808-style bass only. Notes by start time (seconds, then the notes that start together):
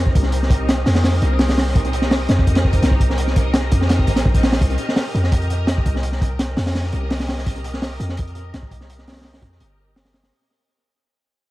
Already playing: F2
0.15 C2
0.86 F2
1.22 C2
2.29 F2
2.82 C2
3.72 F2
4.08 A#1
4.25 A#1
4.61 C2
5.14 F2
5.86 C2
6.57 F2
6.93 C2
8.00 F2
8.53 C2
9.42 F2
9.61 G1